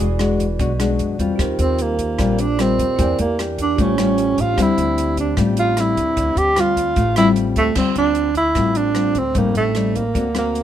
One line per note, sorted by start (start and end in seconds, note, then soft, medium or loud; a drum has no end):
0.00 0.55 E1 medium
0.00 0.57 E3 medium
0.00 1.34 F#4 medium
0.00 1.35 G#4 soft
0.00 1.36 B4 soft
0.00 1.37 D5 medium
0.19 0.45 G#3 medium
0.19 0.45 D4 medium
0.19 0.45 F#4 medium
0.19 cross-stick medium
0.19 closed hi-hat soft
0.40 kick soft
0.40 closed hi-hat soft
0.59 0.96 B1 medium
0.59 1.37 B2 medium
0.59 0.71 G#3 medium
0.59 0.71 D4 medium
0.59 0.71 F#4 medium
0.59 kick medium
0.59 closed hi-hat medium
0.79 1.16 G#3 medium
0.79 1.16 D4 medium
0.79 1.16 F#4 medium
0.79 cross-stick medium
0.79 closed hi-hat soft
0.99 1.17 F#2 medium
0.99 closed hi-hat soft
1.19 1.37 E2 medium
1.19 1.96 G3 medium
1.19 1.96 C4 medium
1.19 1.96 F4 medium
1.19 kick soft
1.19 closed hi-hat soft
1.36 1.58 D#2 medium
1.36 2.54 F4 medium
1.36 2.55 G4 medium
1.36 2.56 A#4 medium
1.36 kick medium
1.36 cross-stick medium
1.36 closed hi-hat medium
1.40 2.17 D#3 medium
1.40 2.57 C5 medium
1.59 2.14 D#2 loud
1.59 1.83 C4 medium
1.59 closed hi-hat soft
1.78 2.42 A#3 medium
1.78 closed hi-hat soft
1.99 kick soft
1.99 closed hi-hat soft
2.19 2.75 A#1 loud
2.19 2.96 A#2 medium
2.19 2.44 G3 medium
2.19 2.45 C4 medium
2.19 2.45 F4 medium
2.19 kick soft
2.19 cross-stick medium
2.19 closed hi-hat medium
2.38 2.63 D4 loud
2.38 closed hi-hat soft
2.58 2.85 G3 soft
2.58 2.86 C4 medium
2.58 3.19 C4 medium
2.58 2.98 F4 soft
2.58 2.86 F4 medium
2.58 2.97 G4 soft
2.58 2.99 A#4 soft
2.58 2.99 D#5 soft
2.58 cross-stick medium
2.58 closed hi-hat soft
2.79 2.97 D#2 medium
2.79 kick soft
2.79 closed hi-hat soft
2.96 3.17 E2 medium
2.96 3.76 E3 medium
2.96 3.24 A#3 medium
2.96 3.24 D4 medium
2.96 3.75 E4 soft
2.96 3.76 G4 soft
2.96 3.25 G4 medium
2.96 3.77 A#4 soft
2.96 kick medium
2.96 closed hi-hat medium
3.02 3.78 D5 medium
3.19 3.74 E2 loud
3.19 3.38 A#3 medium
3.19 closed hi-hat soft
3.38 3.76 A#3 medium
3.38 3.77 D4 medium
3.38 3.77 G4 medium
3.38 cross-stick medium
3.38 closed hi-hat soft
3.58 3.83 D4 medium
3.58 kick soft
3.58 closed hi-hat soft
3.75 4.34 A1 loud
3.75 4.56 A2 medium
3.75 3.95 G3 medium
3.75 3.95 C#4 medium
3.75 4.55 F4 soft
3.75 4.54 G4 soft
3.75 4.57 C5 soft
3.75 kick medium
3.75 closed hi-hat soft
3.79 4.42 C#4 medium
3.79 3.95 F4 medium
3.79 4.58 C#5 medium
3.98 4.54 G3 medium
3.98 4.55 C#4 medium
3.98 4.55 F4 medium
3.98 cross-stick medium
3.98 closed hi-hat soft
4.18 closed hi-hat soft
4.38 4.56 A1 medium
4.38 4.64 F4 loud
4.38 kick soft
4.38 closed hi-hat soft
4.54 5.35 D3 medium
4.54 5.34 G3 medium
4.54 7.70 D4 medium
4.54 7.71 G4 medium
4.54 cross-stick medium
4.54 closed hi-hat medium
4.58 4.76 D2 loud
4.58 5.34 C4 medium
4.58 7.72 C5 soft
4.58 7.73 E5 medium
4.58 kick medium
4.62 5.19 E4 medium
4.78 5.33 D2 loud
4.78 closed hi-hat soft
4.98 closed hi-hat soft
5.17 5.37 D4 medium
5.17 kick soft
5.17 closed hi-hat soft
5.36 5.93 A1 loud
5.36 6.14 A2 medium
5.36 5.73 G3 medium
5.36 5.74 C4 medium
5.36 5.74 F4 medium
5.36 kick medium
5.36 cross-stick medium
5.36 closed hi-hat medium
5.57 5.81 F4 medium
5.57 closed hi-hat soft
5.77 6.54 G3 medium
5.77 6.54 C4 medium
5.77 6.39 E4 medium
5.77 cross-stick medium
5.77 closed hi-hat soft
5.97 6.16 D2 medium
5.97 kick soft
5.97 closed hi-hat soft
6.16 6.35 D2 medium
6.16 6.94 D3 medium
6.16 kick medium
6.16 closed hi-hat medium
6.36 6.92 D2 loud
6.36 6.62 G4 loud
6.36 closed hi-hat soft
6.56 6.96 G3 medium
6.56 6.96 C4 medium
6.56 6.96 F4 medium
6.56 cross-stick medium
6.56 closed hi-hat medium
6.60 7.17 F4 medium
6.77 kick soft
6.77 closed hi-hat soft
6.96 7.52 A1 loud
6.96 7.74 A2 medium
6.96 kick medium
6.96 closed hi-hat medium
7.16 7.73 G3 medium
7.16 7.73 C4 medium
7.16 7.29 E4 loud
7.16 7.74 F4 medium
7.16 cross-stick medium
7.16 closed hi-hat soft
7.36 closed hi-hat soft
7.56 7.75 D2 medium
7.56 7.76 A3 medium
7.56 kick soft
7.56 closed hi-hat soft
7.75 7.95 D2 medium
7.75 8.53 D3 soft
7.75 8.29 G3 medium
7.75 8.30 C4 medium
7.75 7.95 C4 medium
7.75 8.30 F4 medium
7.75 kick medium
7.75 cross-stick medium
7.75 crash medium
7.96 8.52 D2 medium
7.96 8.34 D4 medium
7.96 closed hi-hat soft
8.15 closed hi-hat soft
8.35 8.79 E4 medium
8.35 kick soft
8.35 closed hi-hat soft
8.55 9.11 A1 medium
8.55 9.32 A2 medium
8.55 8.93 G3 medium
8.55 8.93 C4 soft
8.55 8.93 F4 medium
8.55 kick medium
8.55 cross-stick soft
8.55 closed hi-hat soft
8.75 9.20 D4 medium
8.75 closed hi-hat soft
8.95 9.22 G3 medium
8.95 9.22 C4 soft
8.95 9.22 F4 medium
8.95 cross-stick medium
8.95 closed hi-hat soft
9.15 9.34 D2 medium
9.15 9.39 C4 medium
9.15 kick soft
9.15 closed hi-hat soft
9.34 9.54 A1 medium
9.34 10.12 A2 medium
9.34 9.72 G3 medium
9.34 9.72 C4 medium
9.34 9.72 D#4 medium
9.34 kick medium
9.34 closed hi-hat medium
9.38 9.57 A#3 medium
9.55 10.11 A1 medium
9.55 9.98 A3 medium
9.55 closed hi-hat soft
9.75 10.02 G3 soft
9.75 10.02 C4 medium
9.75 10.03 D#4 medium
9.75 cross-stick medium
9.75 closed hi-hat soft
9.95 10.36 A#3 medium
9.95 kick soft
9.95 closed hi-hat soft
10.14 10.63 D2 medium
10.14 10.63 D3 medium
10.14 10.27 A#3 soft
10.14 10.26 C4 medium
10.14 10.27 F#4 medium
10.14 kick medium
10.14 closed hi-hat soft
10.34 10.63 A#3 medium
10.34 10.63 C4 medium
10.34 10.63 F#4 medium
10.34 cross-stick medium
10.34 closed hi-hat soft
10.55 closed hi-hat soft